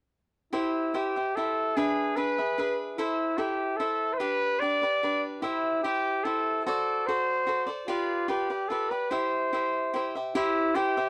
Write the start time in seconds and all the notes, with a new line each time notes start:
0.53 E4 G4 C5 E5
0.94 E4 G4 C5 E5
1.16 G4 C5 E5
1.35 E4 G4 A4 C5 E5
1.76 D4 G#4 B4 E5
2.16 D4 G#4 B4 E5
2.38 G#4 B4 E5
2.58 D4 G#4 B4 E5
2.98 E4 A4 C5 E5
3.38 E4 G4 A4 C5 E5
3.77 E4 A4 C5 E5
4.13 C5
4.18 D4 G4 B4 D5
4.59 D4 G4 B4 D5
4.64 D5
4.82 G4 B4 D5
5.03 D4 G4 B4 D5
5.42 E4 G4 C5 E5
5.83 E4 G4 C5 E5
6.24 E4 G4 A4 C5 E5
6.65 F#4 A4 C5 D5
7.06 F#4 A4 C5 D5
7.47 F#4 A4 C5 D5
7.67 A4 C5 D5
7.87 F4 G4 B4 D5
8.28 F4 G4 B4 D5
8.50 G4 B4 D5
8.68 F4 G4 A4 B4
8.72 D5
8.90 G4 B4 D5
9.11 E4 G4 C5 E5
9.53 E4 G4 C5 E5
9.93 E4 G4 C5 E5
10.15 G4 C5 E5
10.35 E4 G4 C5 E5
10.75 E4 G4 C5 E5
10.97 G4 C5 E5